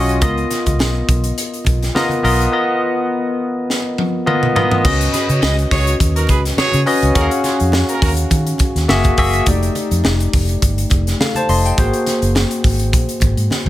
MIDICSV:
0, 0, Header, 1, 6, 480
1, 0, Start_track
1, 0, Tempo, 577478
1, 185, Time_signature, 4, 2, 24, 8
1, 11381, End_track
2, 0, Start_track
2, 0, Title_t, "Horn section"
2, 0, Program_c, 0, 61
2, 4263, Note_on_c, 0, 71, 88
2, 4265, Note_on_c, 0, 66, 74
2, 4267, Note_on_c, 0, 68, 75
2, 4368, Note_off_c, 0, 71, 0
2, 4369, Note_off_c, 0, 66, 0
2, 4371, Note_off_c, 0, 68, 0
2, 4400, Note_on_c, 0, 66, 64
2, 4400, Note_on_c, 0, 68, 65
2, 4401, Note_on_c, 0, 73, 76
2, 4487, Note_off_c, 0, 66, 0
2, 4487, Note_off_c, 0, 68, 0
2, 4488, Note_off_c, 0, 73, 0
2, 4506, Note_on_c, 0, 68, 83
2, 4508, Note_on_c, 0, 75, 99
2, 4509, Note_on_c, 0, 71, 84
2, 4610, Note_off_c, 0, 68, 0
2, 4612, Note_off_c, 0, 71, 0
2, 4612, Note_off_c, 0, 75, 0
2, 4746, Note_on_c, 0, 66, 109
2, 4749, Note_on_c, 0, 68, 98
2, 4749, Note_on_c, 0, 73, 109
2, 4939, Note_off_c, 0, 66, 0
2, 4940, Note_off_c, 0, 68, 0
2, 4940, Note_off_c, 0, 73, 0
2, 5118, Note_on_c, 0, 63, 86
2, 5118, Note_on_c, 0, 70, 87
2, 5120, Note_on_c, 0, 66, 89
2, 5206, Note_off_c, 0, 63, 0
2, 5206, Note_off_c, 0, 70, 0
2, 5207, Note_off_c, 0, 66, 0
2, 5231, Note_on_c, 0, 68, 82
2, 5231, Note_on_c, 0, 71, 76
2, 5232, Note_on_c, 0, 66, 75
2, 5333, Note_off_c, 0, 68, 0
2, 5333, Note_off_c, 0, 71, 0
2, 5334, Note_off_c, 0, 66, 0
2, 5469, Note_on_c, 0, 73, 115
2, 5471, Note_on_c, 0, 68, 102
2, 5473, Note_on_c, 0, 66, 109
2, 5660, Note_off_c, 0, 73, 0
2, 5662, Note_off_c, 0, 68, 0
2, 5663, Note_off_c, 0, 66, 0
2, 5953, Note_on_c, 0, 70, 105
2, 5954, Note_on_c, 0, 58, 97
2, 5954, Note_on_c, 0, 66, 98
2, 6054, Note_off_c, 0, 70, 0
2, 6055, Note_off_c, 0, 58, 0
2, 6055, Note_off_c, 0, 66, 0
2, 6189, Note_on_c, 0, 61, 70
2, 6189, Note_on_c, 0, 68, 84
2, 6190, Note_on_c, 0, 65, 77
2, 6292, Note_off_c, 0, 61, 0
2, 6292, Note_off_c, 0, 68, 0
2, 6293, Note_off_c, 0, 65, 0
2, 6560, Note_on_c, 0, 58, 85
2, 6560, Note_on_c, 0, 70, 101
2, 6562, Note_on_c, 0, 66, 84
2, 6647, Note_off_c, 0, 58, 0
2, 6647, Note_off_c, 0, 70, 0
2, 6648, Note_off_c, 0, 66, 0
2, 6665, Note_on_c, 0, 66, 84
2, 6667, Note_on_c, 0, 70, 81
2, 6669, Note_on_c, 0, 58, 80
2, 6743, Note_off_c, 0, 66, 0
2, 6745, Note_off_c, 0, 70, 0
2, 6746, Note_off_c, 0, 58, 0
2, 11381, End_track
3, 0, Start_track
3, 0, Title_t, "Tine electric piano"
3, 0, Program_c, 1, 4
3, 0, Control_c, 1, 64, 127
3, 0, Note_on_c, 1, 61, 77
3, 0, Note_on_c, 1, 65, 75
3, 0, Note_on_c, 1, 66, 69
3, 0, Note_on_c, 1, 75, 85
3, 167, Note_off_c, 1, 61, 0
3, 169, Note_off_c, 1, 65, 0
3, 171, Note_off_c, 1, 66, 0
3, 173, Note_off_c, 1, 75, 0
3, 173, Note_on_c, 1, 59, 66
3, 179, Note_on_c, 1, 65, 70
3, 180, Note_on_c, 1, 70, 71
3, 185, Note_on_c, 1, 75, 87
3, 196, Control_c, 1, 64, 0
3, 352, Control_c, 1, 64, 127
3, 1078, Note_off_c, 1, 59, 0
3, 1081, Note_off_c, 1, 65, 0
3, 1082, Note_off_c, 1, 70, 0
3, 1084, Note_off_c, 1, 75, 0
3, 1617, Note_on_c, 1, 59, 88
3, 1619, Note_on_c, 1, 65, 79
3, 1623, Note_on_c, 1, 70, 85
3, 1628, Note_on_c, 1, 75, 96
3, 1846, Note_off_c, 1, 59, 0
3, 1847, Note_off_c, 1, 65, 0
3, 1849, Note_off_c, 1, 70, 0
3, 1852, Note_off_c, 1, 75, 0
3, 1856, Note_on_c, 1, 59, 80
3, 1861, Note_on_c, 1, 65, 78
3, 1865, Note_on_c, 1, 70, 79
3, 1868, Note_on_c, 1, 75, 90
3, 2086, Note_off_c, 1, 59, 0
3, 2089, Note_off_c, 1, 65, 0
3, 2090, Note_off_c, 1, 70, 0
3, 2092, Note_off_c, 1, 75, 0
3, 2095, Note_on_c, 1, 59, 73
3, 2100, Note_on_c, 1, 65, 70
3, 2101, Note_on_c, 1, 70, 73
3, 2105, Note_on_c, 1, 75, 77
3, 3000, Note_off_c, 1, 59, 0
3, 3002, Note_off_c, 1, 65, 0
3, 3003, Note_off_c, 1, 70, 0
3, 3005, Note_off_c, 1, 75, 0
3, 3542, Note_on_c, 1, 59, 98
3, 3547, Note_on_c, 1, 65, 85
3, 3548, Note_on_c, 1, 70, 83
3, 3551, Note_on_c, 1, 75, 100
3, 3769, Note_off_c, 1, 59, 0
3, 3772, Note_off_c, 1, 65, 0
3, 3772, Note_off_c, 1, 70, 0
3, 3774, Note_off_c, 1, 75, 0
3, 3784, Note_on_c, 1, 59, 83
3, 3789, Note_on_c, 1, 65, 73
3, 3790, Note_on_c, 1, 70, 77
3, 3794, Note_on_c, 1, 75, 91
3, 4011, Note_off_c, 1, 59, 0
3, 4013, Note_off_c, 1, 65, 0
3, 4013, Note_off_c, 1, 70, 0
3, 4015, Note_off_c, 1, 75, 0
3, 4023, Note_on_c, 1, 61, 74
3, 4026, Note_on_c, 1, 66, 69
3, 4030, Note_on_c, 1, 71, 73
3, 4030, Note_on_c, 1, 75, 79
3, 4039, Control_c, 1, 64, 0
3, 4172, Control_c, 1, 64, 127
3, 4924, Note_off_c, 1, 61, 0
3, 4926, Note_off_c, 1, 66, 0
3, 4928, Note_off_c, 1, 71, 0
3, 4928, Note_off_c, 1, 75, 0
3, 5702, Note_on_c, 1, 61, 89
3, 5705, Note_on_c, 1, 66, 74
3, 5708, Note_on_c, 1, 71, 76
3, 5713, Note_on_c, 1, 75, 91
3, 5930, Note_off_c, 1, 61, 0
3, 5931, Note_off_c, 1, 66, 0
3, 5933, Note_off_c, 1, 71, 0
3, 5935, Note_off_c, 1, 75, 0
3, 5941, Note_on_c, 1, 61, 73
3, 5943, Note_on_c, 1, 66, 77
3, 5945, Note_on_c, 1, 68, 64
3, 5951, Note_on_c, 1, 75, 59
3, 5956, Control_c, 1, 64, 0
3, 6004, Note_on_c, 1, 77, 83
3, 6008, Note_off_c, 1, 75, 0
3, 6114, Control_c, 1, 64, 127
3, 6843, Note_off_c, 1, 61, 0
3, 6844, Note_off_c, 1, 66, 0
3, 6845, Note_off_c, 1, 68, 0
3, 6875, Note_off_c, 1, 77, 0
3, 7383, Note_on_c, 1, 58, 101
3, 7387, Note_on_c, 1, 66, 86
3, 7390, Note_on_c, 1, 68, 86
3, 7393, Note_on_c, 1, 76, 103
3, 7399, Control_c, 1, 64, 0
3, 7521, Control_c, 1, 64, 127
3, 7610, Note_off_c, 1, 58, 0
3, 7612, Note_off_c, 1, 66, 0
3, 7614, Note_off_c, 1, 68, 0
3, 7615, Note_off_c, 1, 76, 0
3, 7628, Note_on_c, 1, 58, 88
3, 7633, Note_on_c, 1, 66, 85
3, 7633, Note_on_c, 1, 68, 90
3, 7638, Note_on_c, 1, 76, 100
3, 7853, Note_off_c, 1, 58, 0
3, 7855, Note_off_c, 1, 66, 0
3, 7855, Note_off_c, 1, 68, 0
3, 7857, Note_off_c, 1, 76, 0
3, 7866, Note_on_c, 1, 57, 72
3, 7871, Note_on_c, 1, 63, 74
3, 7877, Note_on_c, 1, 67, 78
3, 7879, Control_c, 1, 64, 0
3, 7879, Note_on_c, 1, 74, 75
3, 8015, Control_c, 1, 64, 127
3, 8766, Note_off_c, 1, 57, 0
3, 8768, Note_off_c, 1, 63, 0
3, 8771, Note_off_c, 1, 67, 0
3, 8772, Note_off_c, 1, 74, 0
3, 9313, Note_on_c, 1, 77, 64
3, 9320, Note_on_c, 1, 69, 57
3, 9433, Note_off_c, 1, 77, 0
3, 9437, Note_off_c, 1, 69, 0
3, 9443, Note_on_c, 1, 81, 85
3, 9450, Note_on_c, 1, 72, 73
3, 9545, Note_off_c, 1, 81, 0
3, 9548, Note_off_c, 1, 72, 0
3, 9553, Note_on_c, 1, 84, 74
3, 9559, Note_on_c, 1, 75, 65
3, 9673, Note_off_c, 1, 84, 0
3, 9676, Note_off_c, 1, 75, 0
3, 9689, Note_on_c, 1, 79, 66
3, 9787, Note_on_c, 1, 58, 75
3, 9791, Note_on_c, 1, 66, 71
3, 9795, Note_on_c, 1, 68, 70
3, 9799, Control_c, 1, 64, 0
3, 9799, Note_on_c, 1, 72, 87
3, 9911, Note_off_c, 1, 79, 0
3, 9927, Control_c, 1, 64, 127
3, 10686, Note_off_c, 1, 58, 0
3, 10688, Note_off_c, 1, 66, 0
3, 10690, Note_off_c, 1, 68, 0
3, 10692, Note_off_c, 1, 72, 0
3, 11381, End_track
4, 0, Start_track
4, 0, Title_t, "Fingered electric bass"
4, 0, Program_c, 2, 33
4, 0, Note_on_c, 2, 35, 97
4, 181, Note_off_c, 2, 35, 0
4, 181, Note_on_c, 2, 37, 98
4, 361, Note_off_c, 2, 37, 0
4, 552, Note_on_c, 2, 37, 88
4, 654, Note_off_c, 2, 37, 0
4, 654, Note_on_c, 2, 35, 96
4, 837, Note_off_c, 2, 35, 0
4, 902, Note_on_c, 2, 35, 86
4, 1082, Note_off_c, 2, 35, 0
4, 1385, Note_on_c, 2, 35, 84
4, 1564, Note_off_c, 2, 35, 0
4, 1862, Note_on_c, 2, 35, 96
4, 2042, Note_off_c, 2, 35, 0
4, 4028, Note_on_c, 2, 37, 101
4, 4206, Note_off_c, 2, 37, 0
4, 4398, Note_on_c, 2, 49, 93
4, 4480, Note_off_c, 2, 49, 0
4, 4507, Note_on_c, 2, 37, 110
4, 4685, Note_off_c, 2, 37, 0
4, 4747, Note_on_c, 2, 37, 85
4, 4926, Note_off_c, 2, 37, 0
4, 4989, Note_on_c, 2, 39, 87
4, 5228, Note_off_c, 2, 39, 0
4, 5228, Note_on_c, 2, 37, 94
4, 5406, Note_off_c, 2, 37, 0
4, 5599, Note_on_c, 2, 49, 100
4, 5680, Note_off_c, 2, 49, 0
4, 5839, Note_on_c, 2, 37, 86
4, 5920, Note_off_c, 2, 37, 0
4, 6322, Note_on_c, 2, 41, 89
4, 6499, Note_off_c, 2, 41, 0
4, 6667, Note_on_c, 2, 39, 95
4, 6846, Note_off_c, 2, 39, 0
4, 6907, Note_on_c, 2, 51, 102
4, 7086, Note_off_c, 2, 51, 0
4, 7275, Note_on_c, 2, 39, 74
4, 7358, Note_off_c, 2, 39, 0
4, 7389, Note_on_c, 2, 30, 108
4, 7567, Note_off_c, 2, 30, 0
4, 7627, Note_on_c, 2, 30, 98
4, 7806, Note_off_c, 2, 30, 0
4, 7866, Note_on_c, 2, 29, 111
4, 8045, Note_off_c, 2, 29, 0
4, 8238, Note_on_c, 2, 41, 91
4, 8320, Note_off_c, 2, 41, 0
4, 8348, Note_on_c, 2, 29, 96
4, 8526, Note_off_c, 2, 29, 0
4, 8588, Note_on_c, 2, 29, 83
4, 8767, Note_off_c, 2, 29, 0
4, 8829, Note_on_c, 2, 31, 90
4, 9007, Note_off_c, 2, 31, 0
4, 9071, Note_on_c, 2, 29, 95
4, 9248, Note_off_c, 2, 29, 0
4, 9547, Note_on_c, 2, 29, 93
4, 9726, Note_off_c, 2, 29, 0
4, 9790, Note_on_c, 2, 32, 109
4, 9885, Note_off_c, 2, 32, 0
4, 10158, Note_on_c, 2, 30, 92
4, 10336, Note_off_c, 2, 30, 0
4, 10509, Note_on_c, 2, 32, 85
4, 10748, Note_off_c, 2, 32, 0
4, 10748, Note_on_c, 2, 34, 88
4, 10844, Note_off_c, 2, 34, 0
4, 10986, Note_on_c, 2, 32, 94
4, 11083, Note_off_c, 2, 32, 0
4, 11111, Note_on_c, 2, 44, 78
4, 11195, Note_off_c, 2, 44, 0
4, 11350, Note_on_c, 2, 39, 84
4, 11381, Note_off_c, 2, 39, 0
4, 11381, End_track
5, 0, Start_track
5, 0, Title_t, "Muted fingered electric bass strokes"
5, 5469, Note_on_c, 9, 29, 48
5, 5552, Note_off_c, 9, 29, 0
5, 11381, End_track
6, 0, Start_track
6, 0, Title_t, "Drums"
6, 74, Note_on_c, 9, 42, 40
6, 157, Note_off_c, 9, 42, 0
6, 178, Note_on_c, 9, 42, 89
6, 181, Note_on_c, 9, 36, 104
6, 185, Note_on_c, 9, 62, 46
6, 261, Note_off_c, 9, 42, 0
6, 264, Note_off_c, 9, 36, 0
6, 268, Note_off_c, 9, 62, 0
6, 312, Note_on_c, 9, 42, 33
6, 395, Note_off_c, 9, 42, 0
6, 420, Note_on_c, 9, 42, 64
6, 422, Note_on_c, 9, 62, 53
6, 425, Note_on_c, 9, 38, 31
6, 503, Note_off_c, 9, 42, 0
6, 505, Note_off_c, 9, 62, 0
6, 509, Note_off_c, 9, 38, 0
6, 551, Note_on_c, 9, 42, 46
6, 554, Note_on_c, 9, 36, 75
6, 634, Note_off_c, 9, 42, 0
6, 637, Note_off_c, 9, 36, 0
6, 659, Note_on_c, 9, 63, 55
6, 666, Note_on_c, 9, 38, 116
6, 743, Note_off_c, 9, 63, 0
6, 749, Note_off_c, 9, 38, 0
6, 903, Note_on_c, 9, 36, 99
6, 903, Note_on_c, 9, 42, 76
6, 986, Note_off_c, 9, 36, 0
6, 987, Note_off_c, 9, 42, 0
6, 1028, Note_on_c, 9, 42, 57
6, 1111, Note_off_c, 9, 42, 0
6, 1145, Note_on_c, 9, 42, 94
6, 1228, Note_off_c, 9, 42, 0
6, 1276, Note_on_c, 9, 42, 35
6, 1360, Note_off_c, 9, 42, 0
6, 1367, Note_on_c, 9, 62, 51
6, 1382, Note_on_c, 9, 42, 75
6, 1384, Note_on_c, 9, 36, 86
6, 1450, Note_off_c, 9, 62, 0
6, 1465, Note_off_c, 9, 42, 0
6, 1467, Note_off_c, 9, 36, 0
6, 1518, Note_on_c, 9, 42, 51
6, 1521, Note_on_c, 9, 38, 37
6, 1601, Note_off_c, 9, 42, 0
6, 1604, Note_off_c, 9, 38, 0
6, 1619, Note_on_c, 9, 63, 67
6, 1629, Note_on_c, 9, 38, 98
6, 1702, Note_off_c, 9, 63, 0
6, 1712, Note_off_c, 9, 38, 0
6, 1737, Note_on_c, 9, 63, 67
6, 1755, Note_on_c, 9, 42, 35
6, 1820, Note_off_c, 9, 63, 0
6, 1838, Note_off_c, 9, 42, 0
6, 1866, Note_on_c, 9, 46, 70
6, 1949, Note_off_c, 9, 46, 0
6, 2005, Note_on_c, 9, 42, 42
6, 2088, Note_off_c, 9, 42, 0
6, 3075, Note_on_c, 9, 38, 56
6, 3158, Note_off_c, 9, 38, 0
6, 3311, Note_on_c, 9, 48, 77
6, 3394, Note_off_c, 9, 48, 0
6, 3551, Note_on_c, 9, 47, 82
6, 3634, Note_off_c, 9, 47, 0
6, 3680, Note_on_c, 9, 45, 81
6, 3763, Note_off_c, 9, 45, 0
6, 3792, Note_on_c, 9, 43, 106
6, 3875, Note_off_c, 9, 43, 0
6, 3919, Note_on_c, 9, 43, 95
6, 4002, Note_off_c, 9, 43, 0
6, 4029, Note_on_c, 9, 36, 107
6, 4031, Note_on_c, 9, 49, 101
6, 4033, Note_on_c, 9, 62, 50
6, 4113, Note_off_c, 9, 36, 0
6, 4114, Note_off_c, 9, 49, 0
6, 4116, Note_off_c, 9, 62, 0
6, 4163, Note_on_c, 9, 42, 58
6, 4246, Note_off_c, 9, 42, 0
6, 4269, Note_on_c, 9, 42, 63
6, 4271, Note_on_c, 9, 62, 54
6, 4275, Note_on_c, 9, 38, 34
6, 4352, Note_off_c, 9, 42, 0
6, 4354, Note_off_c, 9, 62, 0
6, 4358, Note_off_c, 9, 38, 0
6, 4399, Note_on_c, 9, 42, 45
6, 4482, Note_off_c, 9, 42, 0
6, 4505, Note_on_c, 9, 63, 55
6, 4512, Note_on_c, 9, 38, 120
6, 4588, Note_off_c, 9, 63, 0
6, 4595, Note_off_c, 9, 38, 0
6, 4643, Note_on_c, 9, 42, 55
6, 4726, Note_off_c, 9, 42, 0
6, 4749, Note_on_c, 9, 36, 99
6, 4752, Note_on_c, 9, 38, 37
6, 4752, Note_on_c, 9, 46, 81
6, 4832, Note_off_c, 9, 36, 0
6, 4835, Note_off_c, 9, 38, 0
6, 4835, Note_off_c, 9, 46, 0
6, 4879, Note_on_c, 9, 42, 66
6, 4962, Note_off_c, 9, 42, 0
6, 4989, Note_on_c, 9, 36, 92
6, 4993, Note_on_c, 9, 42, 88
6, 5072, Note_off_c, 9, 36, 0
6, 5076, Note_off_c, 9, 42, 0
6, 5122, Note_on_c, 9, 42, 58
6, 5205, Note_off_c, 9, 42, 0
6, 5211, Note_on_c, 9, 62, 54
6, 5225, Note_on_c, 9, 42, 73
6, 5229, Note_on_c, 9, 36, 83
6, 5294, Note_off_c, 9, 62, 0
6, 5308, Note_off_c, 9, 42, 0
6, 5312, Note_off_c, 9, 36, 0
6, 5365, Note_on_c, 9, 42, 56
6, 5368, Note_on_c, 9, 38, 36
6, 5448, Note_off_c, 9, 42, 0
6, 5451, Note_off_c, 9, 38, 0
6, 5460, Note_on_c, 9, 63, 67
6, 5471, Note_on_c, 9, 38, 102
6, 5543, Note_off_c, 9, 63, 0
6, 5554, Note_off_c, 9, 38, 0
6, 5583, Note_on_c, 9, 63, 70
6, 5596, Note_on_c, 9, 42, 57
6, 5666, Note_off_c, 9, 63, 0
6, 5679, Note_off_c, 9, 42, 0
6, 5706, Note_on_c, 9, 46, 73
6, 5789, Note_off_c, 9, 46, 0
6, 5840, Note_on_c, 9, 42, 48
6, 5923, Note_off_c, 9, 42, 0
6, 5945, Note_on_c, 9, 42, 91
6, 5947, Note_on_c, 9, 36, 111
6, 5948, Note_on_c, 9, 62, 54
6, 6029, Note_off_c, 9, 42, 0
6, 6030, Note_off_c, 9, 36, 0
6, 6031, Note_off_c, 9, 62, 0
6, 6078, Note_on_c, 9, 42, 58
6, 6161, Note_off_c, 9, 42, 0
6, 6182, Note_on_c, 9, 62, 50
6, 6185, Note_on_c, 9, 42, 68
6, 6190, Note_on_c, 9, 38, 34
6, 6265, Note_off_c, 9, 62, 0
6, 6268, Note_off_c, 9, 42, 0
6, 6273, Note_off_c, 9, 38, 0
6, 6315, Note_on_c, 9, 42, 45
6, 6398, Note_off_c, 9, 42, 0
6, 6418, Note_on_c, 9, 63, 58
6, 6427, Note_on_c, 9, 38, 117
6, 6501, Note_off_c, 9, 63, 0
6, 6510, Note_off_c, 9, 38, 0
6, 6556, Note_on_c, 9, 42, 55
6, 6639, Note_off_c, 9, 42, 0
6, 6666, Note_on_c, 9, 36, 97
6, 6666, Note_on_c, 9, 46, 81
6, 6749, Note_off_c, 9, 46, 0
6, 6750, Note_off_c, 9, 36, 0
6, 6788, Note_on_c, 9, 42, 66
6, 6871, Note_off_c, 9, 42, 0
6, 6902, Note_on_c, 9, 62, 34
6, 6902, Note_on_c, 9, 64, 70
6, 6907, Note_on_c, 9, 36, 94
6, 6909, Note_on_c, 9, 42, 90
6, 6985, Note_off_c, 9, 62, 0
6, 6985, Note_off_c, 9, 64, 0
6, 6990, Note_off_c, 9, 36, 0
6, 6992, Note_off_c, 9, 42, 0
6, 7036, Note_on_c, 9, 42, 50
6, 7119, Note_off_c, 9, 42, 0
6, 7131, Note_on_c, 9, 62, 51
6, 7141, Note_on_c, 9, 42, 83
6, 7147, Note_on_c, 9, 36, 101
6, 7214, Note_off_c, 9, 62, 0
6, 7224, Note_off_c, 9, 42, 0
6, 7231, Note_off_c, 9, 36, 0
6, 7281, Note_on_c, 9, 42, 53
6, 7285, Note_on_c, 9, 38, 34
6, 7365, Note_off_c, 9, 42, 0
6, 7368, Note_off_c, 9, 38, 0
6, 7383, Note_on_c, 9, 63, 72
6, 7390, Note_on_c, 9, 38, 106
6, 7467, Note_off_c, 9, 63, 0
6, 7473, Note_off_c, 9, 38, 0
6, 7503, Note_on_c, 9, 63, 65
6, 7515, Note_on_c, 9, 42, 57
6, 7521, Note_on_c, 9, 36, 77
6, 7586, Note_off_c, 9, 63, 0
6, 7598, Note_off_c, 9, 42, 0
6, 7604, Note_off_c, 9, 36, 0
6, 7625, Note_on_c, 9, 46, 77
6, 7629, Note_on_c, 9, 36, 93
6, 7708, Note_off_c, 9, 46, 0
6, 7712, Note_off_c, 9, 36, 0
6, 7758, Note_on_c, 9, 42, 45
6, 7841, Note_off_c, 9, 42, 0
6, 7865, Note_on_c, 9, 42, 101
6, 7868, Note_on_c, 9, 36, 103
6, 7870, Note_on_c, 9, 62, 52
6, 7948, Note_off_c, 9, 42, 0
6, 7951, Note_off_c, 9, 36, 0
6, 7953, Note_off_c, 9, 62, 0
6, 8001, Note_on_c, 9, 42, 54
6, 8084, Note_off_c, 9, 42, 0
6, 8106, Note_on_c, 9, 62, 56
6, 8107, Note_on_c, 9, 42, 73
6, 8189, Note_off_c, 9, 62, 0
6, 8190, Note_off_c, 9, 42, 0
6, 8239, Note_on_c, 9, 42, 47
6, 8322, Note_off_c, 9, 42, 0
6, 8342, Note_on_c, 9, 63, 62
6, 8351, Note_on_c, 9, 38, 109
6, 8426, Note_off_c, 9, 63, 0
6, 8434, Note_off_c, 9, 38, 0
6, 8480, Note_on_c, 9, 42, 55
6, 8564, Note_off_c, 9, 42, 0
6, 8590, Note_on_c, 9, 36, 107
6, 8592, Note_on_c, 9, 46, 85
6, 8673, Note_off_c, 9, 36, 0
6, 8675, Note_off_c, 9, 46, 0
6, 8718, Note_on_c, 9, 42, 62
6, 8801, Note_off_c, 9, 42, 0
6, 8826, Note_on_c, 9, 62, 31
6, 8830, Note_on_c, 9, 36, 95
6, 8830, Note_on_c, 9, 42, 96
6, 8909, Note_off_c, 9, 62, 0
6, 8913, Note_off_c, 9, 36, 0
6, 8913, Note_off_c, 9, 42, 0
6, 8960, Note_on_c, 9, 42, 53
6, 9043, Note_off_c, 9, 42, 0
6, 9058, Note_on_c, 9, 62, 53
6, 9063, Note_on_c, 9, 42, 75
6, 9070, Note_on_c, 9, 36, 94
6, 9141, Note_off_c, 9, 62, 0
6, 9147, Note_off_c, 9, 42, 0
6, 9153, Note_off_c, 9, 36, 0
6, 9202, Note_on_c, 9, 42, 48
6, 9206, Note_on_c, 9, 38, 38
6, 9286, Note_off_c, 9, 42, 0
6, 9289, Note_off_c, 9, 38, 0
6, 9311, Note_on_c, 9, 63, 68
6, 9315, Note_on_c, 9, 38, 114
6, 9394, Note_off_c, 9, 63, 0
6, 9398, Note_off_c, 9, 38, 0
6, 9431, Note_on_c, 9, 63, 70
6, 9439, Note_on_c, 9, 42, 52
6, 9514, Note_off_c, 9, 63, 0
6, 9522, Note_off_c, 9, 42, 0
6, 9550, Note_on_c, 9, 46, 69
6, 9633, Note_off_c, 9, 46, 0
6, 9687, Note_on_c, 9, 42, 44
6, 9770, Note_off_c, 9, 42, 0
6, 9791, Note_on_c, 9, 36, 112
6, 9791, Note_on_c, 9, 42, 95
6, 9791, Note_on_c, 9, 62, 54
6, 9874, Note_off_c, 9, 36, 0
6, 9874, Note_off_c, 9, 42, 0
6, 9875, Note_off_c, 9, 62, 0
6, 9920, Note_on_c, 9, 42, 54
6, 10003, Note_off_c, 9, 42, 0
6, 10028, Note_on_c, 9, 42, 72
6, 10029, Note_on_c, 9, 62, 54
6, 10034, Note_on_c, 9, 38, 36
6, 10111, Note_off_c, 9, 42, 0
6, 10112, Note_off_c, 9, 62, 0
6, 10117, Note_off_c, 9, 38, 0
6, 10158, Note_on_c, 9, 42, 49
6, 10241, Note_off_c, 9, 42, 0
6, 10266, Note_on_c, 9, 63, 61
6, 10271, Note_on_c, 9, 38, 127
6, 10349, Note_off_c, 9, 63, 0
6, 10355, Note_off_c, 9, 38, 0
6, 10398, Note_on_c, 9, 42, 54
6, 10481, Note_off_c, 9, 42, 0
6, 10508, Note_on_c, 9, 36, 94
6, 10508, Note_on_c, 9, 46, 80
6, 10591, Note_off_c, 9, 36, 0
6, 10591, Note_off_c, 9, 46, 0
6, 10635, Note_on_c, 9, 42, 65
6, 10718, Note_off_c, 9, 42, 0
6, 10744, Note_on_c, 9, 62, 33
6, 10744, Note_on_c, 9, 64, 70
6, 10749, Note_on_c, 9, 36, 90
6, 10752, Note_on_c, 9, 42, 98
6, 10827, Note_off_c, 9, 62, 0
6, 10827, Note_off_c, 9, 64, 0
6, 10832, Note_off_c, 9, 36, 0
6, 10835, Note_off_c, 9, 42, 0
6, 10878, Note_on_c, 9, 42, 58
6, 10961, Note_off_c, 9, 42, 0
6, 10973, Note_on_c, 9, 62, 46
6, 10973, Note_on_c, 9, 64, 64
6, 10981, Note_on_c, 9, 42, 79
6, 10987, Note_on_c, 9, 36, 90
6, 11056, Note_off_c, 9, 62, 0
6, 11056, Note_off_c, 9, 64, 0
6, 11064, Note_off_c, 9, 42, 0
6, 11070, Note_off_c, 9, 36, 0
6, 11117, Note_on_c, 9, 42, 52
6, 11200, Note_off_c, 9, 42, 0
6, 11224, Note_on_c, 9, 63, 69
6, 11229, Note_on_c, 9, 38, 58
6, 11307, Note_off_c, 9, 63, 0
6, 11312, Note_off_c, 9, 38, 0
6, 11342, Note_on_c, 9, 63, 66
6, 11381, Note_off_c, 9, 63, 0
6, 11381, End_track
0, 0, End_of_file